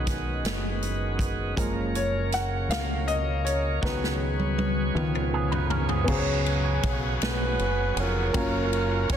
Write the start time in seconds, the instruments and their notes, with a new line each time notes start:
Already playing: fingered electric bass B1, grand piano D#3 G#3 C#4 D#5, tonewheel organ D#3 G#3 B3 F#4, french horn section C#4 G#4 B4 D#5
0.07 kick, snare, closed hi-hat
0.44 fingered electric bass F#1, snare, closed hi-hat
0.82 closed hi-hat
1.19 kick, closed hi-hat
1.56 fingered electric bass F#1, tonewheel organ C#3 A#3 C#4 A#4, grand piano F3 G#3 A#3, french horn section A#4 C#5, kick, closed hi-hat
1.95 grand piano C#5, closed hi-hat
2.32 grand piano F#5, snare, closed hi-hat
2.69 fingered electric bass C#2, grand piano F5, snare, closed hi-hat
3.08 grand piano D#5, closed hi-hat
3.45 grand piano C#5, closed hi-hat
3.81 fingered electric bass C#2, grand piano D#3 F#3 B3 B4, tonewheel organ F#3 B3 C#4 G#4, french horn section F#4 G#4 B4, kick, snare
4.04 snare
4.39 high tom
4.58 high tom
4.95 fingered electric bass C#2, grand piano D#3 F3 B3, tonewheel organ F3, french horn section F4 G#4, mid tom
5.15 mid tom
5.34 clean electric guitar B3 G#4
5.52 clean electric guitar D#4 B4, floor tom
5.70 clean electric guitar C#4 A#4, floor tom
5.89 clean electric guitar B3 G#4, floor tom
6.04 fingered electric bass C#2, grand piano C#3 F#3 B3 C#4, kick, crash
6.08 tonewheel organ F#3 B3 C#4 G#4, grand piano G#4 C5
6.19 grand piano C#5
6.46 ride
6.83 fingered electric bass B1, kick, ride
7.21 fingered electric bass B1, saxophone section F#4 G#4 B4, snare, ride
7.59 fingered electric bass F#1, ride
7.96 fingered electric bass F1, ride
8.00 saxophone section C#4 F4 A#4
8.32 fingered electric bass F#1, grand piano F#3 A#3 C#4 F4, tonewheel organ F#3 F4 A#4, kick, ride
8.37 grand piano C#5
8.73 ride
9.09 fingered electric bass F1, saxophone section C#5, kick, snare, ride